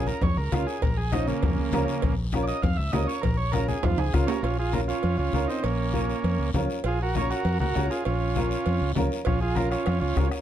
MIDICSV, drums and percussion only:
0, 0, Header, 1, 3, 480
1, 0, Start_track
1, 0, Key_signature, -5, "minor"
1, 0, Tempo, 301205
1, 1315, Time_signature, 4, 2, 24, 8
1, 16593, End_track
2, 0, Start_track
2, 0, Title_t, "Two-headed folk drums"
2, 366, Note_on_c, 9, 36, 80
2, 525, Note_off_c, 9, 36, 0
2, 860, Note_on_c, 9, 37, 88
2, 1019, Note_off_c, 9, 37, 0
2, 1325, Note_on_c, 9, 36, 83
2, 1485, Note_off_c, 9, 36, 0
2, 1806, Note_on_c, 9, 37, 88
2, 1966, Note_off_c, 9, 37, 0
2, 2280, Note_on_c, 9, 36, 86
2, 2439, Note_off_c, 9, 36, 0
2, 2773, Note_on_c, 9, 37, 79
2, 2932, Note_off_c, 9, 37, 0
2, 3240, Note_on_c, 9, 36, 83
2, 3400, Note_off_c, 9, 36, 0
2, 3725, Note_on_c, 9, 37, 77
2, 3884, Note_off_c, 9, 37, 0
2, 4198, Note_on_c, 9, 36, 91
2, 4358, Note_off_c, 9, 36, 0
2, 4673, Note_on_c, 9, 37, 83
2, 4832, Note_off_c, 9, 37, 0
2, 5159, Note_on_c, 9, 36, 79
2, 5318, Note_off_c, 9, 36, 0
2, 5637, Note_on_c, 9, 37, 74
2, 5796, Note_off_c, 9, 37, 0
2, 6115, Note_on_c, 9, 36, 84
2, 6274, Note_off_c, 9, 36, 0
2, 6593, Note_on_c, 9, 36, 76
2, 6597, Note_on_c, 9, 37, 86
2, 6752, Note_off_c, 9, 36, 0
2, 6756, Note_off_c, 9, 37, 0
2, 14766, Note_on_c, 9, 36, 71
2, 14768, Note_on_c, 9, 37, 72
2, 14925, Note_off_c, 9, 36, 0
2, 14927, Note_off_c, 9, 37, 0
2, 15248, Note_on_c, 9, 37, 77
2, 15407, Note_off_c, 9, 37, 0
2, 15485, Note_on_c, 9, 37, 74
2, 15644, Note_off_c, 9, 37, 0
2, 15722, Note_on_c, 9, 37, 80
2, 15881, Note_off_c, 9, 37, 0
2, 16206, Note_on_c, 9, 36, 90
2, 16210, Note_on_c, 9, 37, 82
2, 16365, Note_off_c, 9, 36, 0
2, 16369, Note_off_c, 9, 37, 0
2, 16438, Note_on_c, 9, 37, 86
2, 16593, Note_off_c, 9, 37, 0
2, 16593, End_track
3, 0, Start_track
3, 0, Title_t, "Drums"
3, 105, Note_on_c, 9, 63, 67
3, 123, Note_on_c, 9, 73, 65
3, 264, Note_off_c, 9, 63, 0
3, 282, Note_off_c, 9, 73, 0
3, 341, Note_on_c, 9, 64, 88
3, 355, Note_on_c, 9, 56, 95
3, 361, Note_on_c, 9, 74, 68
3, 501, Note_off_c, 9, 64, 0
3, 514, Note_off_c, 9, 56, 0
3, 520, Note_off_c, 9, 74, 0
3, 832, Note_on_c, 9, 56, 78
3, 833, Note_on_c, 9, 73, 80
3, 836, Note_on_c, 9, 63, 90
3, 991, Note_off_c, 9, 56, 0
3, 992, Note_off_c, 9, 73, 0
3, 996, Note_off_c, 9, 63, 0
3, 1085, Note_on_c, 9, 73, 69
3, 1245, Note_off_c, 9, 73, 0
3, 1306, Note_on_c, 9, 64, 68
3, 1311, Note_on_c, 9, 56, 102
3, 1323, Note_on_c, 9, 74, 67
3, 1465, Note_off_c, 9, 64, 0
3, 1470, Note_off_c, 9, 56, 0
3, 1483, Note_off_c, 9, 74, 0
3, 1791, Note_on_c, 9, 56, 71
3, 1795, Note_on_c, 9, 63, 90
3, 1799, Note_on_c, 9, 73, 72
3, 1951, Note_off_c, 9, 56, 0
3, 1954, Note_off_c, 9, 63, 0
3, 1958, Note_off_c, 9, 73, 0
3, 2034, Note_on_c, 9, 73, 65
3, 2193, Note_off_c, 9, 73, 0
3, 2272, Note_on_c, 9, 56, 92
3, 2279, Note_on_c, 9, 74, 71
3, 2283, Note_on_c, 9, 64, 91
3, 2432, Note_off_c, 9, 56, 0
3, 2439, Note_off_c, 9, 74, 0
3, 2443, Note_off_c, 9, 64, 0
3, 2752, Note_on_c, 9, 63, 90
3, 2752, Note_on_c, 9, 64, 74
3, 2757, Note_on_c, 9, 56, 74
3, 2757, Note_on_c, 9, 66, 72
3, 2759, Note_on_c, 9, 73, 73
3, 2912, Note_off_c, 9, 63, 0
3, 2912, Note_off_c, 9, 64, 0
3, 2916, Note_off_c, 9, 56, 0
3, 2916, Note_off_c, 9, 66, 0
3, 2918, Note_off_c, 9, 73, 0
3, 3001, Note_on_c, 9, 73, 67
3, 3160, Note_off_c, 9, 73, 0
3, 3225, Note_on_c, 9, 56, 104
3, 3238, Note_on_c, 9, 74, 82
3, 3384, Note_off_c, 9, 56, 0
3, 3397, Note_off_c, 9, 74, 0
3, 3703, Note_on_c, 9, 73, 69
3, 3708, Note_on_c, 9, 56, 62
3, 3710, Note_on_c, 9, 63, 80
3, 3862, Note_off_c, 9, 73, 0
3, 3867, Note_off_c, 9, 56, 0
3, 3869, Note_off_c, 9, 63, 0
3, 3946, Note_on_c, 9, 73, 67
3, 4105, Note_off_c, 9, 73, 0
3, 4181, Note_on_c, 9, 74, 76
3, 4193, Note_on_c, 9, 64, 82
3, 4199, Note_on_c, 9, 56, 93
3, 4340, Note_off_c, 9, 74, 0
3, 4353, Note_off_c, 9, 64, 0
3, 4358, Note_off_c, 9, 56, 0
3, 4667, Note_on_c, 9, 56, 72
3, 4667, Note_on_c, 9, 66, 78
3, 4673, Note_on_c, 9, 63, 88
3, 4679, Note_on_c, 9, 73, 80
3, 4826, Note_off_c, 9, 56, 0
3, 4826, Note_off_c, 9, 66, 0
3, 4832, Note_off_c, 9, 63, 0
3, 4838, Note_off_c, 9, 73, 0
3, 4928, Note_on_c, 9, 73, 76
3, 5087, Note_off_c, 9, 73, 0
3, 5151, Note_on_c, 9, 56, 99
3, 5151, Note_on_c, 9, 64, 69
3, 5162, Note_on_c, 9, 74, 66
3, 5310, Note_off_c, 9, 56, 0
3, 5311, Note_off_c, 9, 64, 0
3, 5321, Note_off_c, 9, 74, 0
3, 5626, Note_on_c, 9, 63, 97
3, 5629, Note_on_c, 9, 56, 63
3, 5643, Note_on_c, 9, 73, 70
3, 5785, Note_off_c, 9, 63, 0
3, 5789, Note_off_c, 9, 56, 0
3, 5802, Note_off_c, 9, 73, 0
3, 5871, Note_on_c, 9, 63, 74
3, 5874, Note_on_c, 9, 73, 69
3, 6030, Note_off_c, 9, 63, 0
3, 6034, Note_off_c, 9, 73, 0
3, 6105, Note_on_c, 9, 56, 97
3, 6105, Note_on_c, 9, 65, 104
3, 6112, Note_on_c, 9, 64, 94
3, 6264, Note_off_c, 9, 56, 0
3, 6264, Note_off_c, 9, 65, 0
3, 6272, Note_off_c, 9, 64, 0
3, 6342, Note_on_c, 9, 65, 87
3, 6501, Note_off_c, 9, 65, 0
3, 6587, Note_on_c, 9, 56, 69
3, 6594, Note_on_c, 9, 73, 77
3, 6601, Note_on_c, 9, 63, 79
3, 6747, Note_off_c, 9, 56, 0
3, 6754, Note_off_c, 9, 73, 0
3, 6760, Note_off_c, 9, 63, 0
3, 6824, Note_on_c, 9, 66, 108
3, 6824, Note_on_c, 9, 73, 72
3, 6983, Note_off_c, 9, 66, 0
3, 6984, Note_off_c, 9, 73, 0
3, 7069, Note_on_c, 9, 74, 73
3, 7075, Note_on_c, 9, 56, 103
3, 7228, Note_off_c, 9, 74, 0
3, 7234, Note_off_c, 9, 56, 0
3, 7548, Note_on_c, 9, 63, 83
3, 7553, Note_on_c, 9, 73, 66
3, 7707, Note_off_c, 9, 63, 0
3, 7712, Note_off_c, 9, 73, 0
3, 7792, Note_on_c, 9, 73, 69
3, 7952, Note_off_c, 9, 73, 0
3, 8014, Note_on_c, 9, 56, 92
3, 8025, Note_on_c, 9, 74, 66
3, 8173, Note_off_c, 9, 56, 0
3, 8184, Note_off_c, 9, 74, 0
3, 8497, Note_on_c, 9, 63, 87
3, 8518, Note_on_c, 9, 73, 68
3, 8657, Note_off_c, 9, 63, 0
3, 8677, Note_off_c, 9, 73, 0
3, 8758, Note_on_c, 9, 73, 72
3, 8917, Note_off_c, 9, 73, 0
3, 8982, Note_on_c, 9, 56, 105
3, 8989, Note_on_c, 9, 74, 72
3, 9142, Note_off_c, 9, 56, 0
3, 9149, Note_off_c, 9, 74, 0
3, 9464, Note_on_c, 9, 63, 83
3, 9482, Note_on_c, 9, 73, 66
3, 9623, Note_off_c, 9, 63, 0
3, 9642, Note_off_c, 9, 73, 0
3, 9715, Note_on_c, 9, 73, 61
3, 9874, Note_off_c, 9, 73, 0
3, 9951, Note_on_c, 9, 56, 83
3, 9954, Note_on_c, 9, 74, 69
3, 10110, Note_off_c, 9, 56, 0
3, 10113, Note_off_c, 9, 74, 0
3, 10427, Note_on_c, 9, 63, 81
3, 10427, Note_on_c, 9, 64, 82
3, 10430, Note_on_c, 9, 66, 67
3, 10436, Note_on_c, 9, 73, 76
3, 10586, Note_off_c, 9, 63, 0
3, 10586, Note_off_c, 9, 64, 0
3, 10589, Note_off_c, 9, 66, 0
3, 10596, Note_off_c, 9, 73, 0
3, 10675, Note_on_c, 9, 73, 72
3, 10834, Note_off_c, 9, 73, 0
3, 10898, Note_on_c, 9, 56, 104
3, 10923, Note_on_c, 9, 74, 66
3, 11058, Note_off_c, 9, 56, 0
3, 11082, Note_off_c, 9, 74, 0
3, 11395, Note_on_c, 9, 73, 73
3, 11405, Note_on_c, 9, 63, 94
3, 11554, Note_off_c, 9, 73, 0
3, 11564, Note_off_c, 9, 63, 0
3, 11645, Note_on_c, 9, 73, 65
3, 11805, Note_off_c, 9, 73, 0
3, 11871, Note_on_c, 9, 56, 81
3, 11884, Note_on_c, 9, 74, 67
3, 12030, Note_off_c, 9, 56, 0
3, 12043, Note_off_c, 9, 74, 0
3, 12135, Note_on_c, 9, 63, 75
3, 12295, Note_off_c, 9, 63, 0
3, 12352, Note_on_c, 9, 66, 62
3, 12357, Note_on_c, 9, 73, 72
3, 12373, Note_on_c, 9, 63, 74
3, 12512, Note_off_c, 9, 66, 0
3, 12516, Note_off_c, 9, 73, 0
3, 12532, Note_off_c, 9, 63, 0
3, 12608, Note_on_c, 9, 73, 69
3, 12767, Note_off_c, 9, 73, 0
3, 12833, Note_on_c, 9, 56, 95
3, 12855, Note_on_c, 9, 74, 73
3, 12993, Note_off_c, 9, 56, 0
3, 13014, Note_off_c, 9, 74, 0
3, 13316, Note_on_c, 9, 73, 71
3, 13325, Note_on_c, 9, 63, 92
3, 13476, Note_off_c, 9, 73, 0
3, 13485, Note_off_c, 9, 63, 0
3, 13562, Note_on_c, 9, 73, 70
3, 13722, Note_off_c, 9, 73, 0
3, 13796, Note_on_c, 9, 56, 91
3, 13799, Note_on_c, 9, 74, 67
3, 13955, Note_off_c, 9, 56, 0
3, 13958, Note_off_c, 9, 74, 0
3, 14268, Note_on_c, 9, 66, 69
3, 14283, Note_on_c, 9, 63, 87
3, 14283, Note_on_c, 9, 64, 83
3, 14290, Note_on_c, 9, 73, 75
3, 14428, Note_off_c, 9, 66, 0
3, 14443, Note_off_c, 9, 63, 0
3, 14443, Note_off_c, 9, 64, 0
3, 14449, Note_off_c, 9, 73, 0
3, 14534, Note_on_c, 9, 73, 70
3, 14693, Note_off_c, 9, 73, 0
3, 14739, Note_on_c, 9, 56, 107
3, 14772, Note_on_c, 9, 74, 64
3, 14898, Note_off_c, 9, 56, 0
3, 14932, Note_off_c, 9, 74, 0
3, 15240, Note_on_c, 9, 63, 80
3, 15244, Note_on_c, 9, 73, 65
3, 15400, Note_off_c, 9, 63, 0
3, 15403, Note_off_c, 9, 73, 0
3, 15482, Note_on_c, 9, 73, 61
3, 15642, Note_off_c, 9, 73, 0
3, 15710, Note_on_c, 9, 56, 96
3, 15720, Note_on_c, 9, 74, 60
3, 15870, Note_off_c, 9, 56, 0
3, 15879, Note_off_c, 9, 74, 0
3, 16190, Note_on_c, 9, 73, 75
3, 16193, Note_on_c, 9, 66, 73
3, 16208, Note_on_c, 9, 63, 77
3, 16349, Note_off_c, 9, 73, 0
3, 16353, Note_off_c, 9, 66, 0
3, 16367, Note_off_c, 9, 63, 0
3, 16440, Note_on_c, 9, 73, 70
3, 16593, Note_off_c, 9, 73, 0
3, 16593, End_track
0, 0, End_of_file